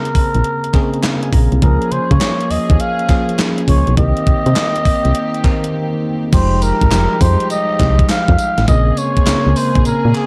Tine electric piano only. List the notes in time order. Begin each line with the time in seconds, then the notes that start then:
Already playing: C#3 A#3 C4 G#4
0.74 C#3 A#3 C4 G#4 D#5
1.04 F5
1.23 G#5
1.33 A#5
1.62 F3 A#3 C#4 G#4
3.09 F3 A#3 C#4 G#4
3.97 D#3 A#3 C4 G4
5.44 D#3 A#3 C4 D#4
6.33 F3 G#3 D#4 G4
6.92 F3 G3 D#4 G4
6.99 G#3
8.68 C#3 A#3 C4 G#4
9.27 C#3 A#3 C4 A#4